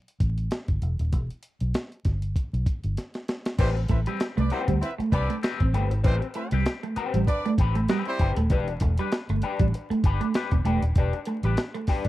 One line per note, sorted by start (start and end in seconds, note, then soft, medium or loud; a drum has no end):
0.08 closed hi-hat soft
0.20 0.48 A1 medium
0.20 kick loud
0.20 closed hi-hat medium
0.38 closed hi-hat soft
0.51 snare loud
0.51 closed hi-hat medium
0.68 0.81 G1 medium
0.68 kick medium
0.68 closed hi-hat soft
0.82 0.97 E1 medium
0.82 closed hi-hat medium
0.99 1.13 D#1 medium
0.99 closed hi-hat medium
1.13 1.28 E1 medium
1.13 kick loud
1.13 closed hi-hat medium
1.31 closed hi-hat soft
1.43 closed hi-hat medium
1.61 1.73 B1 medium
1.61 closed hi-hat medium
1.74 snare loud
1.74 closed hi-hat medium
1.92 closed hi-hat soft
2.05 2.33 G1 medium
2.05 kick medium
2.05 snare soft
2.05 closed hi-hat medium
2.22 closed hi-hat medium
2.36 kick medium
2.36 closed hi-hat medium
2.53 2.65 B1 medium
2.53 closed hi-hat soft
2.66 kick loud
2.66 closed hi-hat medium
2.84 2.96 G1 medium
2.84 closed hi-hat soft
2.97 snare soft
2.97 closed hi-hat medium
3.14 snare medium
3.14 closed hi-hat soft
3.28 snare medium
3.28 closed hi-hat medium
3.46 snare medium
3.46 closed hi-hat medium
3.59 3.86 A1 medium
3.59 3.70 G3 medium
3.59 3.81 C4 medium
3.59 3.69 C4 loud
3.59 3.69 E4 loud
3.59 3.76 G4 medium
3.59 3.75 B4 loud
3.59 3.69 C5 loud
3.59 kick loud
3.59 closed hi-hat medium
3.59 crash loud
3.77 muted clean electric guitar stroke medium
3.77 closed hi-hat soft
3.88 4.05 A1 loud
3.88 4.01 A3 medium
3.88 4.00 C4 medium
3.88 4.00 E4 medium
3.88 4.00 B4 medium
3.88 4.00 E5 medium
3.88 muted clean electric guitar stroke soft
3.88 kick loud
3.88 closed hi-hat medium
4.06 4.16 G3 medium
4.06 4.22 C4 medium
4.06 4.22 G4 medium
4.06 4.21 B4 medium
4.06 closed hi-hat medium
4.20 snare loud
4.20 closed hi-hat loud
4.37 4.50 C2 medium
4.37 4.47 A3 loud
4.37 4.48 D4 medium
4.37 4.48 B4 medium
4.37 4.48 D5 loud
4.37 muted clean electric guitar stroke soft
4.37 closed hi-hat soft
4.50 4.62 G3 medium
4.50 4.73 C4 medium
4.50 4.62 C4 medium
4.50 4.62 E4 medium
4.50 4.69 G4 medium
4.50 4.67 B4 medium
4.50 4.62 C5 medium
4.50 muted clean electric guitar stroke soft
4.50 closed hi-hat medium
4.68 4.80 D2 medium
4.68 4.78 G3 medium
4.68 muted clean electric guitar stroke soft
4.68 kick medium
4.68 closed hi-hat soft
4.82 4.92 C4 medium
4.82 4.92 E4 medium
4.82 4.92 B4 medium
4.82 4.92 E5 medium
4.82 muted clean electric guitar stroke soft
4.82 closed hi-hat medium
4.98 5.08 A3 medium
4.98 muted fingered electric bass stroke medium
4.98 muted clean electric guitar stroke soft
4.98 closed hi-hat soft
5.12 5.28 C2 loud
5.12 5.35 C4 medium
5.12 5.37 D4 loud
5.12 5.30 G4 medium
5.12 5.37 B4 loud
5.12 5.29 B4 medium
5.12 5.37 D5 loud
5.12 muted clean electric guitar stroke soft
5.12 kick loud
5.12 closed hi-hat medium
5.30 5.39 A3 medium
5.30 muted clean electric guitar stroke soft
5.30 closed hi-hat soft
5.43 5.65 C4 medium
5.43 5.61 G4 medium
5.43 5.60 B4 loud
5.43 muted clean electric guitar stroke soft
5.43 snare loud
5.43 closed hi-hat medium
5.60 5.72 A1 medium
5.60 5.70 C4 medium
5.60 muted clean electric guitar stroke soft
5.60 kick medium
5.60 closed hi-hat soft
5.73 5.90 G1 medium
5.73 5.86 A3 medium
5.73 5.92 C4 medium
5.73 5.91 G4 medium
5.73 5.90 B4 medium
5.73 closed hi-hat medium
5.90 6.03 G#1 medium
5.90 muted clean electric guitar stroke soft
5.90 closed hi-hat medium
6.04 6.20 A1 medium
6.04 6.15 G3 loud
6.04 6.26 C4 loud
6.04 6.15 C4 loud
6.04 6.15 E4 medium
6.04 6.22 G4 loud
6.04 6.21 B4 loud
6.04 6.15 C5 loud
6.04 kick loud
6.04 closed hi-hat medium
6.22 muted clean electric guitar stroke medium
6.22 closed hi-hat soft
6.34 6.47 A3 medium
6.34 6.49 C4 medium
6.34 6.49 E4 medium
6.34 6.49 B4 medium
6.34 6.49 E5 medium
6.34 muted clean electric guitar stroke soft
6.34 closed hi-hat medium
6.51 6.64 C2 loud
6.51 6.62 G3 medium
6.51 6.68 C4 medium
6.51 6.68 G4 medium
6.51 6.67 B4 medium
6.51 closed hi-hat medium
6.66 snare loud
6.66 closed hi-hat loud
6.83 6.93 A3 medium
6.83 muted clean electric guitar stroke soft
6.83 closed hi-hat soft
6.96 7.19 C4 medium
6.96 7.14 G4 medium
6.96 7.13 B4 loud
6.96 muted fingered electric bass stroke soft
6.96 muted clean electric guitar stroke soft
6.96 closed hi-hat medium
7.14 7.26 A1 loud
7.14 7.24 G3 medium
7.14 muted clean electric guitar stroke soft
7.14 closed hi-hat medium
7.27 7.52 D4 loud
7.27 7.52 B4 loud
7.27 7.52 D5 loud
7.27 muted clean electric guitar stroke soft
7.27 kick medium
7.27 closed hi-hat medium
7.45 7.55 A3 medium
7.45 muted clean electric guitar stroke soft
7.45 closed hi-hat soft
7.58 7.86 A1 medium
7.58 7.81 C4 medium
7.58 7.76 G4 medium
7.58 7.75 B4 medium
7.58 muted clean electric guitar stroke soft
7.58 kick loud
7.58 closed hi-hat medium
7.75 7.85 A3 medium
7.75 muted clean electric guitar stroke soft
7.75 closed hi-hat soft
7.88 8.01 G3 medium
7.88 8.11 C4 medium
7.88 8.07 G4 medium
7.88 8.06 B4 loud
7.88 snare loud
7.88 closed hi-hat medium
8.05 8.32 G3 loud
8.05 8.32 C4 loud
8.05 8.31 E4 loud
8.05 8.32 C5 loud
8.05 muted clean electric guitar stroke medium
8.05 closed hi-hat soft
8.19 8.35 G1 medium
8.19 8.38 C4 medium
8.19 8.38 G4 medium
8.19 8.37 B4 medium
8.19 kick loud
8.19 closed hi-hat medium
8.37 8.50 D#1 medium
8.37 8.46 A3 medium
8.37 muted clean electric guitar stroke medium
8.37 closed hi-hat medium
8.50 8.78 E1 loud
8.50 8.73 D4 medium
8.50 8.69 G4 medium
8.50 8.68 B4 loud
8.50 kick loud
8.50 closed hi-hat medium
8.68 muted clean electric guitar stroke soft
8.68 closed hi-hat soft
8.80 8.97 E1 loud
8.80 8.93 A3 medium
8.80 muted clean electric guitar stroke medium
8.80 kick loud
8.80 closed hi-hat medium
8.98 9.08 G3 medium
8.98 9.14 D4 medium
8.98 9.14 G4 medium
8.98 9.13 B4 medium
8.98 closed hi-hat medium
9.12 snare loud
9.12 closed hi-hat medium
9.29 9.41 G1 medium
9.29 9.39 A3 medium
9.29 muted clean electric guitar stroke soft
9.29 closed hi-hat soft
9.42 9.65 D4 medium
9.42 9.60 G4 medium
9.42 9.60 B4 loud
9.42 muted clean electric guitar stroke soft
9.42 closed hi-hat medium
9.59 9.72 A1 medium
9.59 9.69 G3 medium
9.59 muted clean electric guitar stroke soft
9.59 kick loud
9.59 closed hi-hat medium
9.74 muted clean electric guitar stroke soft
9.74 closed hi-hat medium
9.90 10.00 A3 medium
9.90 muted fingered electric bass stroke soft
9.90 muted clean electric guitar stroke soft
9.90 closed hi-hat soft
10.04 10.19 G1 loud
10.04 10.26 D4 medium
10.04 10.22 G4 medium
10.04 10.21 B4 medium
10.04 muted clean electric guitar stroke soft
10.04 kick loud
10.04 closed hi-hat medium
10.21 10.30 A3 medium
10.21 muted clean electric guitar stroke soft
10.21 closed hi-hat medium
10.34 10.57 D4 medium
10.34 10.52 G4 medium
10.34 10.51 B4 medium
10.34 muted clean electric guitar stroke soft
10.34 snare loud
10.34 closed hi-hat medium
10.51 10.64 E1 medium
10.51 10.61 B3 medium
10.51 muted clean electric guitar stroke soft
10.51 kick medium
10.51 closed hi-hat soft
10.65 10.80 E1 medium
10.65 10.77 A3 medium
10.65 10.83 D4 medium
10.65 10.83 G4 medium
10.65 10.82 B4 medium
10.65 closed hi-hat medium
10.82 10.94 D#1 medium
10.82 muted clean electric guitar stroke soft
10.82 closed hi-hat medium
10.95 11.11 E1 medium
10.95 11.19 D4 loud
10.95 11.14 G4 loud
10.95 11.13 B4 loud
10.95 kick loud
10.95 closed hi-hat medium
11.13 muted clean electric guitar stroke soft
11.13 closed hi-hat soft
11.25 11.38 A3 medium
11.25 muted clean electric guitar stroke soft
11.25 closed hi-hat medium
11.43 11.55 A1 medium
11.43 11.53 G3 medium
11.43 11.59 D4 medium
11.43 11.59 G4 medium
11.43 11.59 B4 medium
11.43 closed hi-hat medium
11.57 snare loud
11.57 closed hi-hat medium
11.74 11.84 A3 medium
11.74 muted clean electric guitar stroke soft
11.74 closed hi-hat soft
11.87 12.09 D4 medium
11.87 12.05 G4 medium
11.87 12.04 B4 medium
11.87 muted clean electric guitar stroke soft
11.87 muted fingered electric bass stroke soft
11.87 kick loud
11.87 snare soft
11.87 open hi-hat medium
12.05 12.09 G1 medium
12.05 12.09 A3 medium
12.05 closed hi-hat medium